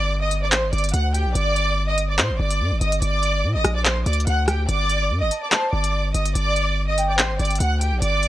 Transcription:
0.00 0.53 G1 loud
0.00 0.18 D5 loud
0.00 0.19 D6 medium
0.00 downlifter medium
0.21 0.37 D#5 medium
0.21 0.38 D#6 medium
0.31 closed hi-hat medium
0.42 0.50 D5 medium
0.42 0.50 D6 medium
0.52 0.64 A1 loud
0.52 0.68 C5 medium
0.52 0.68 C6 medium
0.52 clap loud
0.52 closed hi-hat medium
0.63 0.72 G1 loud
0.73 0.93 G1 loud
0.73 0.89 D5 medium
0.73 0.89 D6 medium
0.73 closed hi-hat soft
0.78 closed hi-hat medium
0.84 closed hi-hat medium
0.89 closed hi-hat medium
0.94 1.27 D2 loud
0.94 1.10 F#5 medium
0.94 1.10 F#6 medium
0.94 closed hi-hat medium
1.14 1.31 G4 medium
1.14 1.30 G5 medium
1.14 closed hi-hat medium
1.26 1.35 A#1 loud
1.35 2.20 G1 loud
1.35 1.85 D5 loud
1.35 1.85 D6 medium
1.35 closed hi-hat medium
1.56 closed hi-hat medium
1.88 2.04 D#5 medium
1.88 2.04 D#6 medium
1.98 closed hi-hat medium
2.09 2.16 D5 medium
2.09 2.17 D6 medium
2.19 2.31 A#2 loud
2.19 2.35 C5 medium
2.19 2.35 C6 medium
2.19 clap loud
2.19 closed hi-hat medium
2.30 2.39 G1 loud
2.39 2.62 G1 loud
2.39 2.79 D5 medium
2.39 2.79 D6 medium
2.51 closed hi-hat medium
2.60 2.73 G2 loud
2.71 2.81 G1 loud
2.81 3.01 G1 loud
2.81 2.97 D#5 medium
2.81 2.98 D#6 medium
2.81 closed hi-hat medium
2.92 closed hi-hat medium
3.02 3.45 G1 loud
3.02 3.52 D5 loud
3.02 3.52 D6 medium
3.02 closed hi-hat medium
3.23 closed hi-hat medium
3.44 3.56 A#2 loud
3.55 3.64 G1 loud
3.55 3.71 D#5 loud
3.55 3.71 D#6 medium
3.64 4.04 A#1 loud
3.64 cross-stick loud
3.64 closed hi-hat medium
3.75 3.83 D5 loud
3.75 3.83 D6 medium
3.85 4.01 C5 medium
3.85 4.02 C6 medium
3.85 clap loud
3.85 closed hi-hat medium
4.06 4.26 D2 loud
4.06 4.22 D5 medium
4.06 4.22 D6 medium
4.06 closed hi-hat medium
4.13 closed hi-hat medium
4.20 closed hi-hat medium
4.27 4.67 D2 loud
4.27 4.43 F#5 loud
4.27 4.43 F#6 medium
4.27 closed hi-hat medium
4.48 4.64 G4 medium
4.48 4.64 G5 medium
4.48 cross-stick medium
4.48 closed hi-hat medium
4.69 5.12 G1 loud
4.69 5.18 D5 loud
4.69 5.19 D6 loud
4.69 closed hi-hat medium
4.89 closed hi-hat medium
5.10 5.23 G2 loud
5.21 5.31 G1 loud
5.21 5.37 D#5 medium
5.21 5.38 D#6 medium
5.31 5.90 A5 medium
5.31 closed hi-hat medium
5.42 5.50 D5 medium
5.42 5.50 D6 medium
5.52 5.68 C5 medium
5.52 5.68 C6 medium
5.52 clap loud
5.52 closed hi-hat medium
5.73 6.13 G1 loud
5.73 6.12 D5 medium
5.73 6.12 D6 medium
5.84 closed hi-hat medium
6.14 6.34 G1 loud
6.14 6.30 D#5 medium
6.14 6.31 D#6 medium
6.14 closed hi-hat medium
6.25 closed hi-hat medium
6.35 7.20 G1 loud
6.35 6.85 D5 loud
6.35 6.85 D6 medium
6.35 closed hi-hat medium
6.56 closed hi-hat medium
6.88 7.04 D#5 loud
6.88 7.04 D#6 medium
6.98 7.57 G5 medium
6.98 closed hi-hat medium
7.09 7.17 D5 medium
7.09 7.17 D6 medium
7.19 7.31 A1 medium
7.19 7.35 C5 medium
7.19 7.35 C6 medium
7.19 clap loud
7.19 closed hi-hat medium
7.30 7.39 G1 loud
7.39 7.59 G1 loud
7.39 7.55 D5 medium
7.39 7.56 D6 medium
7.39 closed hi-hat soft
7.45 closed hi-hat medium
7.51 closed hi-hat medium
7.55 closed hi-hat medium
7.60 7.94 D2 loud
7.60 7.76 F#5 medium
7.60 7.77 F#6 medium
7.60 closed hi-hat medium
7.81 7.98 G4 medium
7.81 7.97 G5 medium
7.81 closed hi-hat medium
7.92 8.01 A#1 loud
8.02 8.28 G1 loud
8.02 8.28 D5 loud
8.02 8.28 D6 loud
8.02 closed hi-hat medium
8.23 closed hi-hat medium

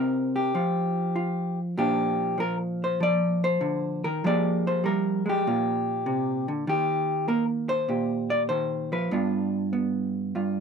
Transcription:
0.00 0.53 C3 medium
0.00 0.54 C4 medium
0.00 0.52 D#4 soft
0.00 0.53 A#4 medium
0.00 0.35 C5 medium
0.36 1.58 G4 medium
0.55 1.78 F3 medium
0.55 1.15 F4 soft
1.16 1.79 F4 medium
1.77 4.21 A#2 medium
1.77 2.37 F3 soft
1.77 4.22 D4 soft
1.77 2.40 G4 medium
2.38 3.00 F3 medium
2.38 2.56 A#4 medium
2.84 3.02 C5 medium
3.00 3.60 F3 medium
3.00 3.44 D5 loud
3.44 4.04 C5 medium
3.61 4.03 D3 medium
4.04 4.23 D#3 medium
4.04 4.23 A#4 medium
4.24 6.06 F3 medium
4.24 4.83 G#3 medium
4.24 7.27 A#3 soft
4.24 5.28 G4 soft
4.24 4.67 D5 loud
4.67 4.85 C5 medium
4.84 5.25 G3 medium
4.84 5.27 A#4 medium
5.26 5.45 G#3 medium
5.26 6.50 G4 medium
5.47 6.66 A#2 medium
5.47 6.70 F4 soft
6.06 6.48 C3 medium
6.48 6.67 D3 medium
6.67 8.48 D#3 medium
6.67 7.28 G4 medium
7.28 8.92 A#3 medium
7.28 7.44 A#4 medium
7.69 8.30 C5 loud
7.89 9.09 A#2 medium
7.89 9.13 G4 soft
8.30 8.42 D5 medium
8.49 8.92 D#3 medium
8.49 8.92 C5 loud
8.92 9.11 F3 medium
8.92 10.60 B4 medium
9.11 10.34 G2 medium
9.11 9.72 B3 soft
9.11 10.60 D4 soft
9.11 10.34 F4 medium
9.73 10.60 B3 medium
10.35 10.60 G2 medium
10.35 10.60 F4 soft

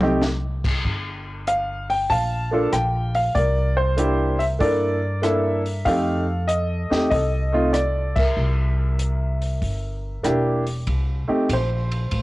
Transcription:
0.00 0.80 C2 medium
0.00 0.20 A3 medium
0.00 0.20 C4 medium
0.00 0.20 D#4 medium
0.00 0.21 G4 medium
0.00 mid tom medium
0.22 snare medium
0.64 kick medium
0.64 crash medium
0.84 2.06 G1 medium
0.84 kick soft
1.47 1.87 F5 medium
1.47 closed hi-hat medium
1.90 2.09 G5 medium
1.90 open hi-hat soft
2.10 2.69 A#1 medium
2.10 3.13 F5 medium
2.10 2.74 A5 loud
2.10 kick soft
2.10 open hi-hat soft
2.51 2.70 A#3 medium
2.51 2.71 D4 medium
2.51 2.71 F4 medium
2.51 2.71 A4 medium
2.73 3.31 A#1 medium
2.73 3.12 G5 medium
2.73 cross-stick medium
2.73 closed hi-hat medium
3.15 3.34 F5 medium
3.15 open hi-hat soft
3.35 4.56 C2 medium
3.35 4.58 A#4 medium
3.35 3.74 D5 medium
3.35 kick soft
3.35 open hi-hat soft
3.77 4.42 C5 medium
3.97 4.35 A#3 medium
3.97 4.36 D4 medium
3.97 4.36 E4 medium
3.97 4.37 G4 medium
3.97 closed hi-hat medium
4.39 4.44 E5 medium
4.39 open hi-hat soft
4.59 5.82 G2 medium
4.59 4.98 A#3 medium
4.59 4.98 D4 medium
4.59 4.99 E4 medium
4.59 4.99 A4 medium
4.59 5.19 D5 medium
4.59 kick soft
4.59 open hi-hat soft
4.64 5.84 A#4 medium
5.22 5.61 A#3 medium
5.22 5.61 D4 medium
5.22 5.61 E4 medium
5.22 5.61 A4 medium
5.22 5.88 E5 medium
5.22 cross-stick medium
5.22 closed hi-hat medium
5.66 open hi-hat soft
5.85 6.87 F2 medium
5.85 6.23 A3 medium
5.85 6.24 C4 medium
5.85 6.24 D#4 medium
5.85 6.24 G4 medium
5.85 6.50 F5 medium
5.85 kick soft
5.85 open hi-hat soft
5.89 7.09 A4 medium
6.48 7.09 D#5 medium
6.48 closed hi-hat medium
6.90 7.10 E2 medium
6.90 7.09 A3 medium
6.90 7.09 C4 medium
6.90 7.09 D#4 medium
6.90 7.10 G4 medium
6.90 snare soft
7.10 8.33 C2 medium
7.10 8.34 A4 medium
7.10 7.75 D#5 medium
7.10 kick soft
7.10 open hi-hat soft
7.52 7.71 A3 medium
7.52 7.72 C4 medium
7.52 7.72 D#4 medium
7.52 7.72 F4 medium
7.73 8.17 D5 medium
7.73 cross-stick medium
7.73 closed hi-hat medium
8.16 10.22 A#4 medium
8.16 10.20 E5 medium
8.16 kick medium
8.16 crash medium
8.37 9.58 C2 medium
8.99 closed hi-hat medium
9.42 open hi-hat soft
9.62 10.21 G1 medium
9.62 kick soft
9.62 open hi-hat soft
10.23 10.83 E1 medium
10.23 10.62 A#3 medium
10.23 10.62 D4 medium
10.23 10.63 E4 medium
10.23 10.63 G4 medium
10.23 cross-stick medium
10.23 closed hi-hat medium
10.67 open hi-hat soft
10.87 11.26 C2 medium
10.87 kick soft
10.87 ride medium
11.28 11.47 A3 medium
11.28 11.47 C4 medium
11.28 11.47 D#4 medium
11.28 11.48 G4 medium
11.28 muted upright bass stroke soft
11.49 12.10 A#1 medium
11.49 12.22 C5 medium
11.49 kick soft
11.49 hi-hat pedal medium
11.49 ride medium
11.92 ride soft
12.11 12.22 A1 medium
12.11 kick soft
12.11 ride medium

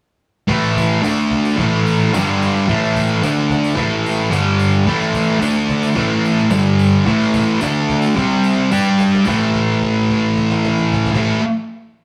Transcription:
0.48 1.02 A2 medium
0.48 1.02 E3 loud
0.48 1.02 A3 loud
0.48 cajon bass loud
0.63 tambourine soft
0.76 cajon bass medium
0.76 tambourine medium
1.02 1.56 D3 loud
1.02 1.57 A3 medium
1.02 1.57 D4 loud
1.02 cajon slap loud
1.02 tambourine medium
1.31 cajon bass medium
1.31 tambourine soft
1.45 tambourine medium
1.57 2.14 A2 medium
1.57 2.15 E3 loud
1.57 2.13 A3 loud
1.57 cajon bass loud
1.86 tambourine medium
2.14 2.67 G2 loud
2.14 2.67 D3 loud
2.14 2.68 G3 loud
2.14 cajon slap loud
2.14 tambourine loud
2.42 tambourine medium
2.68 3.22 A2 loud
2.68 3.22 E3 loud
2.68 3.22 A3 loud
2.68 cajon bass loud
2.84 tambourine soft
2.95 cajon bass medium
2.95 tambourine medium
3.22 3.75 D3 loud
3.22 3.76 A3 medium
3.22 3.77 D4 loud
3.22 cajon slap loud
3.22 tambourine medium
3.50 cajon bass medium
3.50 tambourine soft
3.64 tambourine medium
3.75 4.30 A2 loud
3.75 4.31 E3 medium
3.75 4.31 A3 loud
3.75 cajon bass loud
4.06 tambourine medium
4.30 4.85 G2 medium
4.30 4.85 D3 loud
4.30 4.85 G3 loud
4.30 cajon slap loud
4.30 tambourine medium
4.59 tambourine medium
4.87 5.39 A2 medium
4.87 5.40 E3 loud
4.87 5.40 A3 loud
4.87 cajon bass loud
5.01 tambourine soft
5.14 cajon bass medium
5.14 tambourine medium
5.40 5.95 D3 medium
5.40 5.95 A3 loud
5.40 5.96 D4 loud
5.40 cajon slap loud
5.40 tambourine medium
5.69 cajon bass medium
5.69 tambourine soft
5.83 tambourine medium
5.95 6.50 A2 medium
5.95 6.50 E3 loud
5.95 6.51 A3 loud
5.95 cajon bass loud
6.25 tambourine medium
6.38 tambourine soft
6.50 7.05 G2 loud
6.50 7.05 D3 loud
6.50 7.06 G3 loud
6.50 cajon slap loud
6.50 tambourine medium
6.79 tambourine medium
6.93 tambourine soft
7.05 7.60 A2 loud
7.05 7.61 E3 medium
7.05 7.61 A3 loud
7.05 cajon bass loud
7.21 tambourine soft
7.34 cajon bass medium
7.34 tambourine medium
7.61 8.15 D3 loud
7.61 8.16 A3 loud
7.61 8.16 D4 medium
7.61 cajon slap loud
7.61 tambourine medium
7.89 cajon bass medium
8.02 tambourine medium
8.16 8.70 C3 loud
8.16 8.70 G3 medium
8.16 8.71 C4 loud
8.16 cajon bass loud
8.16 tambourine soft
8.30 tambourine soft
8.44 tambourine medium
8.71 9.25 G3 loud
8.71 9.26 D4 medium
8.71 9.26 G4 loud
8.71 cajon slap medium
8.71 tambourine medium
8.85 tambourine soft
8.99 cajon slap medium
8.99 tambourine medium
9.15 cajon slap loud
9.24 11.11 A2 medium
9.24 11.14 E3 loud
9.24 cajon bass loud
9.24 tambourine medium
9.29 11.15 A3 medium
9.54 cajon bass medium
9.82 cajon bass medium
10.09 cajon bass medium
10.37 cajon bass medium
10.51 cajon slap medium
10.64 cajon slap medium
10.78 cajon slap medium
10.92 cajon bass loud
11.06 cajon bass medium
11.12 11.38 A2 medium
11.12 11.39 E3 loud
11.12 cajon bass loud
11.12 cajon slap loud
11.16 11.40 A3 loud

